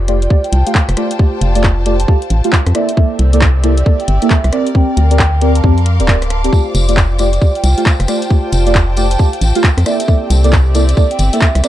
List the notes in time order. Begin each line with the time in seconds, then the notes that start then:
Already playing: F1 F4 C5 G5
0.08 A3 F4 G4 D5, cross-stick, closed hi-hat
0.22 D5, closed hi-hat
0.30 A3 F4 G4 D5, kick
0.44 G5, closed hi-hat
0.50 C2 G5 A5, closed hi-hat
0.66 A3 F4 G4 F5, closed hi-hat
0.75 F5, kick, clap
0.89 F1, cross-stick, closed hi-hat
0.97 A3 F4 G4 D5, cross-stick, closed hi-hat
1.11 closed hi-hat
1.19 A3 F4 G4 D5, kick
1.41 F1 F5, closed hi-hat
1.55 A3 F4 G4 D5, closed hi-hat
1.64 kick, clap
1.86 A3 F4 G4 D5, closed hi-hat
2.00 A5, closed hi-hat
2.08 A3 F4 G4 D5 F5, kick
2.22 F5, closed hi-hat
2.30 A1, closed hi-hat
2.44 A3 F4 G4 F5, closed hi-hat
2.53 kick, clap
2.67 F2, cross-stick, closed hi-hat
2.75 A#3 C4 E4 A4 D5 E5, cross-stick, closed hi-hat
2.87 G4 E5, closed hi-hat
2.95 A#3 E4 A4 D5 E5, kick
3.19 C2, closed hi-hat
3.27 D5
3.33 A#3 E4 A4 D5, closed hi-hat
3.41 kick, clap
3.64 A#3 E4 A4 D5, cross-stick, closed hi-hat
3.77 D5, closed hi-hat
3.86 A#3 E4 A4 D5, kick
4.00 G5, closed hi-hat
4.08 G1 G5, closed hi-hat
4.22 A#3 E4 A4 E5, closed hi-hat
4.30 E5, kick, clap
4.44 C2, cross-stick, closed hi-hat
4.53 C4 G4 A#4 D5, cross-stick, closed hi-hat
4.67 closed hi-hat
4.75 C4 G4 A#4 D5 G5, kick
4.95 D2 F5, closed hi-hat
5.05 C6
5.11 C4 G4 A#4 D5, closed hi-hat
5.19 G5, kick, clap
5.33 G5
5.41 C4 G4 A#4 D5 D6, closed hi-hat
5.55 A5, closed hi-hat
5.64 F2 C4 G4 A#4 D5 A5, kick
5.78 closed hi-hat
5.86 closed hi-hat
6.00 D1 C4 G4 A#4 D5, closed hi-hat
6.08 C4 G4 A#4 D5, kick, clap
6.22 cross-stick, closed hi-hat
6.30 A5, cross-stick, closed hi-hat
6.44 C4 G4 A#4 D5 A5, closed hi-hat
6.53 A3 F4 G4 D5, kick, tambourine
6.61 C5
6.75 F1, closed hi-hat, tambourine
6.89 A3 F4 G4 D5, closed hi-hat, tambourine
6.93 G5, kick, clap
6.97 tambourine
7.19 A3 F4 G4 D5, cross-stick, closed hi-hat, tambourine
7.33 D5, closed hi-hat, tambourine
7.41 A3 F4 G4 D5, kick, tambourine
7.55 G5, closed hi-hat
7.64 C2 G5, closed hi-hat, tambourine
7.77 A3 F4 G4 F5 A5, closed hi-hat, tambourine
7.86 F5, kick, clap, tambourine
8.00 F1, cross-stick, closed hi-hat, tambourine
8.08 A3 F4 G4 D5, cross-stick, closed hi-hat, tambourine
8.22 closed hi-hat, tambourine
8.30 A3 F4 G4 D5, kick, tambourine
8.52 F1 F5, closed hi-hat, tambourine
8.66 A3 F4 G4 D5, closed hi-hat, tambourine
8.74 kick, clap, tambourine
8.97 A3 F4 G4 D5, closed hi-hat, tambourine
9.11 A5, closed hi-hat, tambourine
9.19 A3 F4 G4 D5 F5, kick, tambourine
9.33 F5, closed hi-hat
9.41 A1, closed hi-hat, tambourine
9.55 A3 F4 G4 F5, closed hi-hat, tambourine
9.64 kick, clap, tambourine
9.77 F2, cross-stick, closed hi-hat, tambourine
9.86 A#3 C4 E4 A4 D5 E5, cross-stick, closed hi-hat, tambourine
9.95 G4
9.99 E5, closed hi-hat, tambourine
10.08 A#3 E4 A4 D5, kick, tambourine
10.30 C2, closed hi-hat, tambourine
10.44 A#3 E4 A4 D5, closed hi-hat, tambourine
10.52 D5, kick, clap, tambourine
10.68 E5
10.75 A#3 E4 A4 D5, closed hi-hat, tambourine
10.89 D5, closed hi-hat, tambourine
10.97 A#3 E4 A4 D5, kick, tambourine
11.11 G5, closed hi-hat
11.19 G1 G5, closed hi-hat, tambourine
11.33 A#3 E4 A4 E5, closed hi-hat, tambourine
11.41 E5, kick, clap, tambourine
11.55 C2, cross-stick, closed hi-hat, tambourine
11.64 C4 G4 A#4 D5, cross-stick, closed hi-hat, tambourine